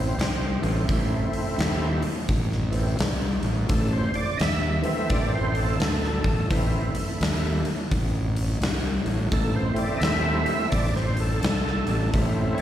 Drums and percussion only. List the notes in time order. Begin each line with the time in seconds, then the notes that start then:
0.19 snare, open hi-hat
0.63 open hi-hat
0.89 kick, open hi-hat
1.33 open hi-hat
1.59 snare, open hi-hat
2.02 open hi-hat
2.29 kick, open hi-hat
2.52 snare
2.73 open hi-hat
2.99 snare, open hi-hat
3.43 open hi-hat
3.69 kick, open hi-hat
4.14 open hi-hat
4.40 snare, open hi-hat
4.84 open hi-hat
5.10 kick, open hi-hat
5.55 open hi-hat
5.80 snare, open hi-hat
6.04 snare
6.24 kick, open hi-hat
6.51 kick, open hi-hat
6.95 open hi-hat
7.21 snare, open hi-hat
7.65 open hi-hat
7.91 kick, open hi-hat
8.36 open hi-hat
8.62 snare, open hi-hat
9.06 open hi-hat
9.32 kick, open hi-hat
9.76 open hi-hat
10.01 snare, open hi-hat
10.46 open hi-hat
10.72 kick, open hi-hat
10.96 snare
11.17 open hi-hat
11.43 snare, open hi-hat
11.67 snare
11.87 open hi-hat
12.14 kick, open hi-hat
12.58 open hi-hat